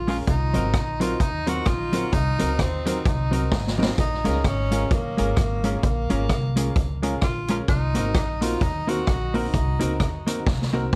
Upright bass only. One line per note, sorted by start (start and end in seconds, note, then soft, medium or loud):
0.00 0.21 A#1 medium
0.28 0.51 C2 medium
0.56 0.72 G#1 medium
0.74 1.13 A#1 medium
1.21 1.60 D#2 medium
1.67 2.06 A#1 medium
2.13 2.36 C2 medium
2.41 2.57 C#2 medium
2.59 2.99 D#2 medium
3.06 3.45 C2 medium
3.52 3.91 G#1 medium
3.99 4.22 A#1 medium
4.26 4.42 C#2 medium
4.45 4.84 G#1 medium
4.91 5.14 A#1 medium
5.19 5.35 G#1 medium
5.38 5.77 G#1 medium
5.84 6.07 A#1 medium
6.12 6.27 G#1 medium
6.30 6.69 C2 medium
6.77 7.16 C#2 medium
7.22 7.62 A#1 medium
7.69 7.92 C2 medium
7.96 8.12 G#1 medium
8.61 9.01 D#2 medium
9.08 9.47 A#1 medium
9.54 9.77 C2 medium
9.82 9.98 C#2 medium
10.00 10.40 D#2 medium
10.47 10.86 C2 medium